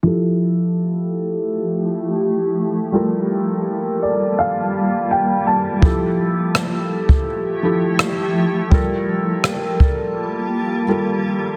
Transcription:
<<
  \new Staff \with { instrumentName = "Felt piano" } { \time 4/4 \key f \major \tempo 4 = 83 << { r1 | r4. d''8 f''4 g''8 a''8 | r1 | r1 | } \\ { <f e' g' a'>1 | <g f' a' bes'>1 | <f e' g' a'>2~ <f e' g' a'>8 <f e' g' a'>4. | <g f' a' bes'>2. <g f' a' bes'>4 | } >> }
  \new Staff \with { instrumentName = "Ambient pad" } { \time 4/4 \key f \major <f a e' g'>1 | <g bes f' a''>1 | <f a e' g'>1 | <g bes f' a''>1 | }
  \new DrumStaff \with { instrumentName = "Drums" } \drummode { \time 4/4 r4 r4 r4 r4 | r4 r4 r4 r4 | bd4 ss8. bd16 r4 ss4 | bd4 ss8 bd8 r4 r4 | }
>>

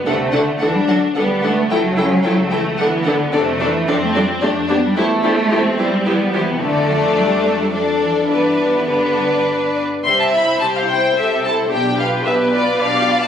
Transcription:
<<
  \new Staff \with { instrumentName = "Violin section" } { \time 3/4 \key d \mixolydian \tempo 4 = 109 fis''8 fis''8 fis''8 fis''8 fis''8 fis''8 | g''8 g''8 g''8 g''8 fis''8 fis''8 | \key c \major d''8 d''8 d''8 d''8 d''8 d''8 | c''8 c''8 c''8 c''8 c''8 c''8 |
d''2 d''4 | d''4 d''4. r8 | c'''16 a''16 b''8 a''16 f''16 g''8 e''8 a''8 | g''8 f''8 e''8 d''8 f''8. a''16 | }
  \new Staff \with { instrumentName = "Viola section" } { \time 3/4 \key d \mixolydian <d' a'>8 <d' a'>8 <d' a'>8 <d' a'>8 <d' a'>8 <d' a'>8 | <e' a'>8 <e' a'>8 <e' a'>8 <e' a'>8 <d' a'>8 <d' a'>8 | \key c \major <d' a'>8 <d' a'>8 <d' a'>8 <d' a'>8 <d' g'>8 <d' g'>8 | <e' g'>8 <e' g'>8 <e' g'>8 <e' g'>8 <e' g'>8 <e' g'>8 |
<d' a'>2 <d' a'>4 | <d' b'>4 <d' b'>4. r8 | e''4 c''4 a'4 | g'4 b'4 d''4 | }
  \new Staff \with { instrumentName = "Violin section" } { \time 3/4 \key d \mixolydian a4 d'4 b4 | a8 cis'8 a4 b4 | \key c \major a4 c'4 d'4 | e'8 d'8 c'4 b4 |
a2 d'4 | b2~ b8 r8 | <c' g'>8 <e' c''>8 <c' g'>8 <e' c''>8 <c' g'>8 <e' c''>8 | <d' g'>8 <f' b'>8 <d' g'>8 <f' b'>8 <d' g'>8 <f' b'>8 | }
  \new Staff \with { instrumentName = "Cello section" } { \clef bass \time 3/4 \key d \mixolydian c8 d8 e16 g16 fis8 g8 a8 | fis4. e8 e8 d8 | \key c \major c8 e8 f16 a16 g8 a8 b16 g16 | a4. g8 g8 e16 c16 |
d8 f8 g8 a16 g16 f8 e16 f16 | e4 d4 r4 | c4 c4 c4 | b,4 b,4 b,4 | }
  \new Staff \with { instrumentName = "Double bass section" } { \clef bass \time 3/4 \key d \mixolydian d,4 d,4 d,4 | cis,4 cis,4 d,4 | \key c \major f,4 f,4 f,4 | e,4 e,4 e,4 |
f,2. | g,2~ g,8 r8 | c,4 c,4 c,4 | b,,4 b,,4 b,,4 | }
>>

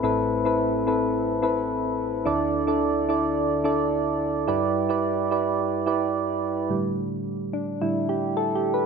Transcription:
\new Staff \with { instrumentName = "Synth keys" } { \time 4/4 \key a \dorian \tempo 4 = 108 << { <c' e' a' b'>8 r16 <c' e' a' b'>8 r16 <c' e' a' b'>8. r16 <c' e' a' b'>4~ <c' e' a' b'>16 r16 | <d' e' a' d''>8 r16 <d' e' a' d''>8 r16 <d' e' a' d''>8. r16 <d' e' a' d''>4~ <d' e' a' d''>16 r16 | <e' g' b' d''>8 r16 <e' g' b' d''>8 r16 <e' g' b' d''>8. r16 <e' g' b' d''>4~ <e' g' b' d''>16 r16 | r4. d'8 e'8 g'8 \tuplet 3/2 { a'8 g'8 b'8 } | } \\ { <a,, a,>1 | <d, d>1 | g,1 | <a, d g>8 r4. <a, d g>8 r4. | } >> }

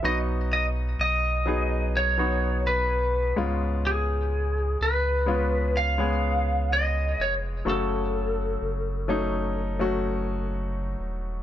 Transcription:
<<
  \new Staff \with { instrumentName = "Lead electric guitar" } { \time 4/4 \key cis \minor \tempo 4 = 63 dis''8 dis''8 dis''4 cis''8. b'8. r8 | gis'4 b'4 eis''4 dis''8 cis''8 | a'2. r4 | }
  \new Staff \with { instrumentName = "Grand piano" } { \time 4/4 \key cis \minor <fis b dis' fis'>4. <fis b dis' gis'>8. <fis b dis' fis'>4~ <fis b dis' fis'>16 <gis b cis' eis'>8~ | <gis b cis' eis'>4. <gis b cis' eis'>8. <gis b cis' gis'>4.~ <gis b cis' gis'>16 | <fis a cis' fis'>4. <fis a cis' dis'>8. <fis a cis' fis'>4.~ <fis a cis' fis'>16 | }
  \new Staff \with { instrumentName = "Grand piano" } { \clef bass \time 4/4 \key cis \minor r2. r8 gis,8~ | gis,4 r2. | cis4. r2 r8 | }
  \new Staff \with { instrumentName = "Sub bass" } { \clef bass \time 4/4 \key cis \minor b,,4 b,,2~ b,,8 cis,8~ | cis,4 cis,2~ cis,8 eis,,8 | fis,,4 fis,,2~ fis,,8 dis,,8 | }
>>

